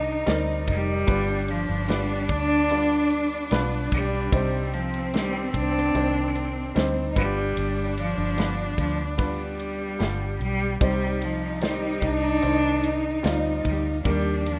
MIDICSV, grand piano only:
0, 0, Header, 1, 2, 480
1, 0, Start_track
1, 0, Key_signature, -3, "minor"
1, 0, Tempo, 810811
1, 642, Time_signature, 4, 2, 24, 8
1, 8638, End_track
2, 0, Start_track
2, 0, Title_t, "Grand piano"
2, 0, Program_c, 0, 0
2, 0, Control_c, 0, 64, 127
2, 0, Note_on_c, 0, 51, 67
2, 0, Note_on_c, 0, 55, 69
2, 0, Note_on_c, 0, 60, 63
2, 0, Note_on_c, 0, 72, 74
2, 0, Note_on_c, 0, 74, 68
2, 135, Note_off_c, 0, 55, 0
2, 136, Note_off_c, 0, 60, 0
2, 136, Note_off_c, 0, 74, 0
2, 138, Note_off_c, 0, 51, 0
2, 139, Note_off_c, 0, 72, 0
2, 155, Note_on_c, 0, 55, 88
2, 155, Note_on_c, 0, 60, 80
2, 158, Note_on_c, 0, 74, 84
2, 160, Note_on_c, 0, 63, 85
2, 161, Note_on_c, 0, 70, 94
2, 615, Note_off_c, 0, 55, 0
2, 615, Note_off_c, 0, 60, 0
2, 616, Note_off_c, 0, 74, 0
2, 617, Note_off_c, 0, 63, 0
2, 618, Note_off_c, 0, 70, 0
2, 632, Note_on_c, 0, 55, 75
2, 634, Note_on_c, 0, 59, 67
2, 635, Note_on_c, 0, 43, 63
2, 636, Note_on_c, 0, 62, 65
2, 638, Note_on_c, 0, 65, 69
2, 640, Note_on_c, 0, 71, 78
2, 649, Control_c, 0, 64, 0
2, 751, Control_c, 0, 64, 127
2, 1093, Note_off_c, 0, 55, 0
2, 1094, Note_off_c, 0, 59, 0
2, 1095, Note_off_c, 0, 62, 0
2, 1096, Note_off_c, 0, 65, 0
2, 1097, Note_off_c, 0, 71, 0
2, 1113, Note_on_c, 0, 55, 76
2, 1116, Note_on_c, 0, 59, 63
2, 1117, Note_on_c, 0, 62, 64
2, 1120, Note_on_c, 0, 65, 68
2, 1123, Note_on_c, 0, 71, 75
2, 1335, Note_off_c, 0, 43, 0
2, 1574, Note_off_c, 0, 55, 0
2, 1575, Note_off_c, 0, 59, 0
2, 1575, Note_off_c, 0, 62, 0
2, 1577, Note_off_c, 0, 65, 0
2, 1578, Note_off_c, 0, 71, 0
2, 1600, Note_on_c, 0, 55, 78
2, 1603, Note_on_c, 0, 59, 67
2, 1604, Note_on_c, 0, 62, 72
2, 1606, Note_on_c, 0, 65, 67
2, 1608, Note_on_c, 0, 74, 71
2, 2057, Note_off_c, 0, 55, 0
2, 2058, Note_off_c, 0, 59, 0
2, 2059, Note_off_c, 0, 62, 0
2, 2060, Note_off_c, 0, 65, 0
2, 2061, Note_off_c, 0, 74, 0
2, 2077, Note_on_c, 0, 55, 80
2, 2079, Note_on_c, 0, 59, 82
2, 2082, Note_on_c, 0, 62, 80
2, 2085, Note_on_c, 0, 71, 107
2, 2086, Note_on_c, 0, 65, 80
2, 2535, Note_off_c, 0, 55, 0
2, 2537, Note_off_c, 0, 59, 0
2, 2538, Note_off_c, 0, 62, 0
2, 2540, Note_off_c, 0, 65, 0
2, 2540, Note_off_c, 0, 71, 0
2, 2557, Note_on_c, 0, 55, 75
2, 2558, Note_on_c, 0, 60, 69
2, 2561, Note_on_c, 0, 48, 61
2, 2561, Note_on_c, 0, 62, 64
2, 2563, Note_on_c, 0, 63, 71
2, 2567, Note_on_c, 0, 72, 87
2, 2571, Control_c, 0, 64, 0
2, 2688, Control_c, 0, 64, 127
2, 3015, Note_off_c, 0, 55, 0
2, 3016, Note_off_c, 0, 60, 0
2, 3018, Note_off_c, 0, 62, 0
2, 3019, Note_off_c, 0, 63, 0
2, 3020, Note_off_c, 0, 72, 0
2, 3039, Note_on_c, 0, 55, 67
2, 3039, Note_on_c, 0, 60, 64
2, 3040, Note_on_c, 0, 62, 73
2, 3042, Note_on_c, 0, 51, 60
2, 3045, Note_on_c, 0, 72, 74
2, 3258, Note_off_c, 0, 48, 0
2, 3497, Note_off_c, 0, 55, 0
2, 3497, Note_off_c, 0, 60, 0
2, 3497, Note_off_c, 0, 62, 0
2, 3498, Note_off_c, 0, 51, 0
2, 3499, Note_off_c, 0, 72, 0
2, 3517, Note_on_c, 0, 55, 70
2, 3519, Note_on_c, 0, 60, 63
2, 3521, Note_on_c, 0, 51, 73
2, 3521, Note_on_c, 0, 62, 63
2, 3526, Note_on_c, 0, 72, 82
2, 3975, Note_off_c, 0, 55, 0
2, 3977, Note_off_c, 0, 60, 0
2, 3978, Note_off_c, 0, 51, 0
2, 3978, Note_off_c, 0, 62, 0
2, 3980, Note_off_c, 0, 72, 0
2, 3996, Note_on_c, 0, 55, 94
2, 3999, Note_on_c, 0, 60, 76
2, 4002, Note_on_c, 0, 62, 81
2, 4005, Note_on_c, 0, 63, 82
2, 4005, Note_on_c, 0, 72, 93
2, 4228, Note_off_c, 0, 55, 0
2, 4233, Note_off_c, 0, 62, 0
2, 4237, Note_on_c, 0, 55, 75
2, 4241, Note_off_c, 0, 60, 0
2, 4241, Note_on_c, 0, 59, 66
2, 4242, Note_on_c, 0, 43, 66
2, 4242, Note_on_c, 0, 62, 73
2, 4243, Note_off_c, 0, 63, 0
2, 4244, Note_off_c, 0, 72, 0
2, 4245, Note_on_c, 0, 65, 69
2, 4247, Note_on_c, 0, 71, 87
2, 4251, Control_c, 0, 64, 0
2, 4352, Control_c, 0, 64, 127
2, 4924, Note_off_c, 0, 55, 0
2, 4925, Note_off_c, 0, 59, 0
2, 4926, Note_off_c, 0, 62, 0
2, 4928, Note_off_c, 0, 65, 0
2, 4928, Note_off_c, 0, 71, 0
2, 4938, Note_off_c, 0, 43, 0
2, 4957, Note_on_c, 0, 55, 70
2, 4958, Note_on_c, 0, 59, 72
2, 4961, Note_on_c, 0, 62, 64
2, 4962, Note_on_c, 0, 65, 64
2, 4965, Note_on_c, 0, 71, 82
2, 5415, Note_off_c, 0, 55, 0
2, 5416, Note_off_c, 0, 59, 0
2, 5417, Note_off_c, 0, 62, 0
2, 5418, Note_off_c, 0, 65, 0
2, 5419, Note_off_c, 0, 71, 0
2, 5434, Note_on_c, 0, 55, 72
2, 5434, Note_on_c, 0, 59, 64
2, 5436, Note_on_c, 0, 62, 61
2, 5439, Note_on_c, 0, 65, 67
2, 5441, Note_on_c, 0, 71, 75
2, 5894, Note_off_c, 0, 55, 0
2, 5894, Note_off_c, 0, 59, 0
2, 5895, Note_off_c, 0, 62, 0
2, 5897, Note_off_c, 0, 65, 0
2, 5897, Note_off_c, 0, 71, 0
2, 5914, Note_on_c, 0, 55, 71
2, 5916, Note_on_c, 0, 59, 69
2, 5918, Note_on_c, 0, 62, 62
2, 5920, Note_on_c, 0, 65, 69
2, 5922, Note_on_c, 0, 67, 81
2, 6374, Note_off_c, 0, 55, 0
2, 6375, Note_off_c, 0, 59, 0
2, 6376, Note_off_c, 0, 62, 0
2, 6377, Note_off_c, 0, 65, 0
2, 6378, Note_off_c, 0, 67, 0
2, 6397, Note_on_c, 0, 55, 78
2, 6397, Note_on_c, 0, 60, 68
2, 6399, Note_on_c, 0, 74, 70
2, 6400, Note_on_c, 0, 48, 63
2, 6402, Note_on_c, 0, 63, 66
2, 6403, Note_on_c, 0, 72, 82
2, 6410, Control_c, 0, 64, 0
2, 6522, Control_c, 0, 64, 127
2, 6856, Note_off_c, 0, 55, 0
2, 6856, Note_off_c, 0, 60, 0
2, 6856, Note_off_c, 0, 74, 0
2, 6858, Note_off_c, 0, 63, 0
2, 6859, Note_off_c, 0, 72, 0
2, 6874, Note_on_c, 0, 55, 71
2, 6876, Note_on_c, 0, 60, 63
2, 6879, Note_on_c, 0, 74, 65
2, 6880, Note_on_c, 0, 51, 58
2, 6883, Note_on_c, 0, 72, 82
2, 7097, Note_off_c, 0, 48, 0
2, 7334, Note_off_c, 0, 55, 0
2, 7335, Note_off_c, 0, 60, 0
2, 7337, Note_off_c, 0, 51, 0
2, 7337, Note_off_c, 0, 74, 0
2, 7338, Note_off_c, 0, 72, 0
2, 7355, Note_on_c, 0, 60, 63
2, 7356, Note_on_c, 0, 55, 72
2, 7359, Note_on_c, 0, 74, 58
2, 7361, Note_on_c, 0, 51, 67
2, 7362, Note_on_c, 0, 72, 79
2, 7815, Note_off_c, 0, 55, 0
2, 7815, Note_off_c, 0, 60, 0
2, 7816, Note_off_c, 0, 74, 0
2, 7818, Note_off_c, 0, 51, 0
2, 7818, Note_off_c, 0, 72, 0
2, 7831, Note_on_c, 0, 55, 85
2, 7833, Note_on_c, 0, 60, 75
2, 7835, Note_on_c, 0, 74, 78
2, 7836, Note_on_c, 0, 63, 85
2, 7839, Note_on_c, 0, 65, 98
2, 8293, Note_off_c, 0, 55, 0
2, 8294, Note_off_c, 0, 60, 0
2, 8294, Note_off_c, 0, 74, 0
2, 8295, Note_off_c, 0, 63, 0
2, 8296, Note_off_c, 0, 65, 0
2, 8313, Note_on_c, 0, 55, 73
2, 8314, Note_on_c, 0, 58, 70
2, 8317, Note_on_c, 0, 51, 69
2, 8317, Note_on_c, 0, 62, 72
2, 8319, Note_on_c, 0, 67, 62
2, 8322, Note_on_c, 0, 70, 77
2, 8328, Control_c, 0, 64, 0
2, 8419, Control_c, 0, 64, 127
2, 8638, Note_off_c, 0, 51, 0
2, 8638, Note_off_c, 0, 55, 0
2, 8638, Note_off_c, 0, 58, 0
2, 8638, Note_off_c, 0, 62, 0
2, 8638, Note_off_c, 0, 67, 0
2, 8638, Note_off_c, 0, 70, 0
2, 8638, End_track
0, 0, End_of_file